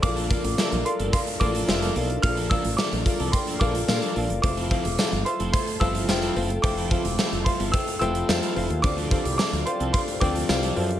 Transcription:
<<
  \new Staff \with { instrumentName = "Grand piano" } { \time 4/4 \key bes \lydian \tempo 4 = 109 d'''4. c'''8 c'''8 d'''4 r8 | f'''8 e'''8 d'''4 c'''8 d'''4 r8 | d'''4. c'''8 c'''8 e'''4 r8 | d'''4. c'''8 e'''8 e'''4 r8 |
d'''4 d'''8 c'''8 c'''8 d'''4 r8 | }
  \new Staff \with { instrumentName = "Grand piano" } { \time 4/4 \key bes \lydian <f' a' bes' d'' f''>8 <f' a' bes' d'' f''>8 <f' a' bes' d'' e''>8 <f' a' bes' d'' f''>8 <f' a' bes' d'' f''>8 <f' a' bes' d'' f''>8 <f' a' bes' d'' e''>8 <f' a' bes' d'' f''>8 | <f' a' bes' d'' f''>8 <f' a' bes' d'' f''>8 <f' a' bes' d'' e''>8 <f' a' bes' d'' f''>8 <f' a' bes' d'' g''>8 <f' a' bes' d'' f''>8 <f' a' bes' d'' f''>8 <f' a' bes' d'' f''>8 | <f' a' c'' e'' f''>8 <f' a' c'' e'' f''>8 <f' a' c'' e'' f''>8 <f' a' c'' e'' f''>8 <f' a' c'' e'' f''>8 <f' a' c'' e'' f''>8 <f' a' c'' e'' g''>8 <f' a' c'' e'' f''>8 | <f' a' c'' e'' g''>8 <f' a' c'' e'' f''>8 <f' a' c'' e'' f''>8 <f' a' c'' e'' f''>8 <f' a' c'' e'' g''>8 <f' a' c'' e'' g''>8 <f' a' c'' e'' f''>8 <f' a' c'' e'' f''>8 |
<f' a' c'' d'' f''>8 <f' a' c'' d'' f''>8 <f' a' c'' d'' e''>8 <f' a' c'' d'' f''>8 <f' a' c'' d'' f''>8 <f' a' c'' d'' g''>8 <f' a' c'' d'' f''>8 <f' a' c'' d'' f''>8 | }
  \new Staff \with { instrumentName = "Grand piano" } { \clef bass \time 4/4 \key bes \lydian bes,4. r2 r8 | bes,4. r2 r8 | r1 | r1 |
d4. r2 r8 | }
  \new Staff \with { instrumentName = "Analog polysynth" } { \time 4/4 \key bes \lydian <d' f' bes'>1~ | <d' f' bes'>1 | r2 <a f' a'>2~ | <a f' a'>1 |
<c' d' g'>1 | }
  \new Staff \with { instrumentName = "Clean electric guitar" } { \time 4/4 \key bes \lydian r16 <f bes d' a'>16 <f bes d' a'>16 r16 <f bes d' a'>16 r8 <f bes d' a'>16 r8 <f bes d' a'>16 <f bes d' a'>16 r16 <f bes d' a'>16 <f bes d' a'>16 r16 | r16 <f bes d' a'>16 <f bes d' a'>16 r16 <f bes d' a'>16 r8 <f bes d' a'>16 r16 <f bes d' a'>16 <f bes d' a'>16 r8 <f bes d' a'>16 <f bes d' a'>16 r16 | r16 <f c' e' a'>16 <f c' e' a'>16 r16 <f c' e' a'>16 r8 <f c' e' a'>16 r8 <f c' e' a'>16 <f c' e' a'>16 r16 <f c' e' a'>16 <f c' e' a'>16 r16 | r16 <f c' e' a'>16 <f c' e' a'>16 r16 <f c' e' a'>16 r8 <f c' e' a'>16 r8 <f c' e' a'>16 <f c' e' a'>16 r16 <f c' e' a'>16 <f c' e' a'>16 r16 |
r16 <f c' d' a'>16 <f c' d' a'>16 r16 <f c' d' a'>16 r8 <f c' d' a'>16 r8 <f c' d' a'>16 <f c' d' a'>16 r16 <f c' d' a'>16 <f c' d' a'>16 r16 | }
  \new Staff \with { instrumentName = "Fretless electric bass" } { \clef bass \time 4/4 \key bes \lydian bes,,8. a,,16 r16 bes,,16 r16 g,,16 r8 a,,8 f,,8 b,,8 | bes,,8. a,,16 r16 bes,,16 r16 c,16 r8 bes,,8 bes,16 r16 bes,,16 ges,,16 | f,,8. e,,16 r16 g,,16 r16 f,,16 r8 g,,8 f,,8 ges,,8 | f,,8. e,,16 r16 f,,16 r16 g,,16 r8 f,,8 f,16 r16 f,,16 ees,16 |
d,8. c,16 r16 d,16 r16 c,16 r8 d,8 c,8 ges,8 | }
  \new DrumStaff \with { instrumentName = "Drums" } \drummode { \time 4/4 <hh bd>16 hh16 <hh bd>16 hh16 <sn tamb>16 hh16 hh16 hh16 <hh bd>16 hh16 <hh bd>16 hh16 <sn tamb>16 hh16 hho16 hh16 | <hh bd>16 hh16 <hh bd>16 hh16 <sn tamb>16 hh16 <hh bd>16 hh16 <hh bd>16 hh16 <hh bd>16 hh16 <sn tamb>16 hh16 hho16 hh16 | <hh bd>16 hh16 <hh bd>16 hh16 <sn tamb>16 hh16 hh16 hh16 <hh bd>16 hh16 <hh bd>16 hh16 <sn tamb>16 hh16 hho16 hh16 | <hh bd>16 hh16 <hh bd>16 hh16 <sn tamb>16 hh16 <hh bd>16 hh16 <hh bd>16 hh16 hh16 hh16 <sn tamb>16 hh16 hho16 hh16 |
<hh bd>16 hh16 <hh bd>16 hh16 <sn tamb>16 hh16 hh16 hh16 <hh bd>16 hh16 <hh bd>16 hh16 <sn tamb>16 hh16 hho16 hh16 | }
>>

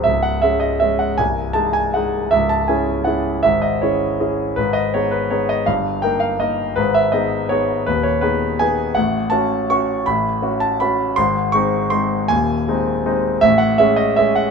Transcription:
\new Staff \with { instrumentName = "Grand piano" } { \time 3/4 \key cis \minor \tempo 4 = 161 << { e''8 fis''8 e''8 dis''8 e''8 fis''8 | gis''4 a''8 gis''8 fis''4 | e''8 a''8 gis''4 fis''4 | e''8 dis''8 cis''4. r8 |
b'8 dis''8 cis''8 b'8 cis''8 dis''8 | eis''4 g''8 eis''8 dis''4 | b'8 e''8 dis''4 cis''4 | b'8 cis''8 b'4 gis''4 |
fis''4 a''4 cis'''4 | b''4. a''8 b''4 | bis''4 cis'''4 bis''4 | gis''2 r4 |
e''8 fis''8 e''8 dis''8 e''8 fis''8 | } \\ { <cis,, cis,>4 <gis cis' gis'>4 <gis cis' gis'>4 | <bis,,, bis,,>4 <gis dis' gis'>4 <gis dis' gis'>4 | <cis,, cis,>4 <cis' e' gis'>4 <cis' e' gis'>4 | <gis,, gis,>4 <cis' e' gis'>4 <cis' e' gis'>4 |
<gis,, gis,>4 <b dis' gis'>4 <b dis' gis'>4 | <g,, g,>4 <ais dis' ais'>4 <ais dis' ais'>4 | <gis,, gis,>4 <b dis' gis'>4 <b dis' gis'>4 | <dis,, dis,>4 <b dis' gis'>4 <b dis' gis'>4 |
<a,, a,>4 <cis' fis'>4 <cis' fis'>4 | <a,, a,>4 <cis' fis'>4 <cis' fis'>4 | <gis,, gis,>4 <gis bis dis'>4 <gis bis dis'>4 | <dis,, dis,>4 <gis bis dis'>4 <gis bis dis'>4 |
<a,, a,>4 <gis cis' gis'>4 <gis cis' gis'>4 | } >> }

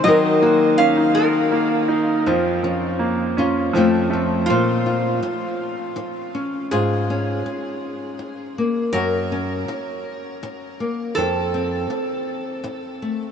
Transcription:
<<
  \new Staff \with { instrumentName = "Resonator guitar played with a steel bar" } { \time 3/4 \key bes \minor \tempo 4 = 81 ees''4 f''8 bes'4.~ | bes'2 r4 | f'2. | aes'2. |
bes'2. | a'2. | }
  \new Staff \with { instrumentName = "Nylon-string guitar" } { \time 3/4 \key bes \minor << { <ees' ges' bes'>8 ges'4 ges'4. | f'8 des'4 <des' f'>8 <a c' f' a'>8 c'8 | c''8 f'2 des'8 | f'8 des'2 bes8 |
ges'8 des'2 bes8 | a'8 c'2 a8 | } \\ { ees2. | f,2 f,4 | bes,4 r2 | aes,4 r2 |
ges,4 r2 | f,4 r2 | } >> }
  \new Staff \with { instrumentName = "Upright piano" } { \time 3/4 \key bes \minor ges8 bes8 des'16 ees'8. bes8 ees'8 | f8 f8 bes8 des'8 f8 a8 | r2. | r2. |
r2. | r2. | }
>>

